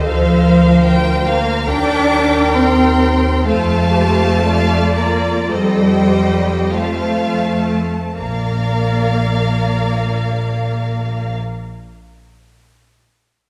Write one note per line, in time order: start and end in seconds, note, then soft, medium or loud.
0.00 0.44 A4 medium
0.00 1.67 C5 medium
0.00 1.26 F5 loud
0.05 1.65 D2 medium
0.05 1.26 F3 loud
0.05 0.84 F5 medium
0.43 1.66 A#4 medium
0.84 1.25 G5 medium
1.24 1.67 A#3 loud
1.24 1.68 F5 medium
1.24 1.67 A#5 loud
1.67 3.47 D#2 medium
1.67 2.53 D4 loud
1.67 3.43 A#4 loud
1.67 2.10 G5 medium
1.67 2.54 D6 loud
2.11 3.45 G5 medium
2.54 3.48 C4 loud
2.54 3.47 C6 loud
3.45 5.51 F2 medium
3.45 4.94 A3 loud
3.45 3.93 A4 medium
3.45 4.42 C5 medium
3.45 4.43 F5 medium
3.45 4.93 A5 loud
3.94 4.45 G4 medium
4.44 5.49 F4 medium
4.44 5.51 D5 medium
4.44 4.96 F5 medium
4.96 5.52 A#3 medium
4.96 5.51 D5 medium
4.96 5.51 A#5 medium
5.50 7.80 F2 medium
5.50 6.74 G3 loud
5.50 6.11 A4 medium
5.50 6.73 C5 medium
5.50 6.76 D#5 medium
5.50 6.74 G5 loud
6.11 6.75 G4 medium
6.74 8.17 A3 medium
6.74 7.83 F4 medium
6.74 7.81 C5 medium
6.74 7.84 F5 medium
6.74 8.17 A5 medium
8.17 11.36 A#1 medium
8.17 11.35 A#3 medium
8.17 11.34 A#4 medium
8.17 11.35 D5 medium
8.17 11.36 F5 medium
8.17 11.34 A#5 medium